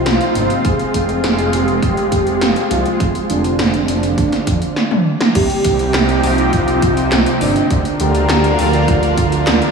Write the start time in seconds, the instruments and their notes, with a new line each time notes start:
Already playing: analog synth pad C3 C4 D#4 F4, analog synth lead F4
0.06 detuned saw bass C2, snare, closed hi-hat
0.21 closed hi-hat
0.35 detuned saw bass G1, closed hi-hat
0.50 closed hi-hat
0.65 detuned saw bass F1, analog synth pad G#3, analog synth lead G#4, kick, closed hi-hat
0.79 closed hi-hat
0.94 detuned saw bass F1, kick, closed hi-hat
1.09 closed hi-hat
1.24 detuned saw bass F1, snare, closed hi-hat
1.39 closed hi-hat
1.53 detuned saw bass F1, analog synth lead G4, closed hi-hat
1.68 closed hi-hat
1.82 detuned saw bass F1, kick, closed hi-hat
1.97 closed hi-hat
2.12 detuned saw bass F1, kick, closed hi-hat
2.27 closed hi-hat
2.41 detuned saw bass F1, snare, closed hi-hat
2.56 closed hi-hat
2.71 detuned saw bass C2, analog synth lead F4, closed hi-hat
2.86 closed hi-hat
3.00 detuned saw bass F1, kick, closed hi-hat
3.15 closed hi-hat
3.29 detuned saw bass F1, analog synth lead D4, closed hi-hat
3.44 closed hi-hat
3.59 detuned saw bass F1, snare, closed hi-hat
3.74 closed hi-hat
3.88 detuned saw bass F1, analog synth lead D4, closed hi-hat
4.03 closed hi-hat
4.18 detuned saw bass F1, kick, closed hi-hat
4.32 snare, closed hi-hat
4.47 detuned saw bass F2, kick, closed hi-hat
4.62 closed hi-hat
4.76 snare
4.91 high tom
5.21 snare
5.35 detuned saw bass C2, analog synth pad C3 C4 D#4 G4, analog synth lead G4, kick, closed hi-hat, crash
5.50 closed hi-hat
5.64 detuned saw bass C2, kick, closed hi-hat
5.79 closed hi-hat
5.94 detuned saw bass C2, snare, clap, closed hi-hat
6.09 closed hi-hat
6.23 detuned saw bass C2, analog synth lead F4, open hi-hat
6.38 closed hi-hat
6.53 detuned saw bass C2, kick, closed hi-hat
6.68 closed hi-hat
6.82 detuned saw bass C2, kick, closed hi-hat
6.97 closed hi-hat
7.12 detuned saw bass C2, snare, clap, closed hi-hat
7.26 closed hi-hat
7.41 detuned saw bass G1, analog synth lead D4, open hi-hat
7.56 closed hi-hat
7.70 detuned saw bass D2, analog synth pad D3 D4 F4 A#4, kick, closed hi-hat
7.85 closed hi-hat
8.00 detuned saw bass D2, analog synth lead G4, closed hi-hat
8.15 closed hi-hat
8.29 detuned saw bass D2, snare, clap, closed hi-hat
8.44 closed hi-hat
8.59 detuned saw bass D2, analog synth lead F4, open hi-hat
8.73 closed hi-hat
8.88 detuned saw bass D2, kick, closed hi-hat
9.03 closed hi-hat
9.18 detuned saw bass D2, kick, closed hi-hat
9.32 closed hi-hat
9.47 detuned saw bass D2, snare, clap, closed hi-hat
9.62 closed hi-hat